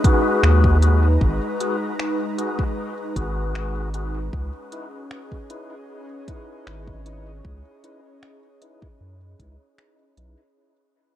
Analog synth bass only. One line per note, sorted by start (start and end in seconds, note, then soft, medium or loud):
0.43 1.18 D#2 loud
1.21 1.39 G#1 medium
3.16 4.29 G#1 medium
4.33 4.51 C#2 medium
6.67 7.41 G#1 loud
7.45 7.63 C#2 medium
9.01 9.35 F#2 medium
9.39 9.58 C#2 medium
10.17 10.36 B1 medium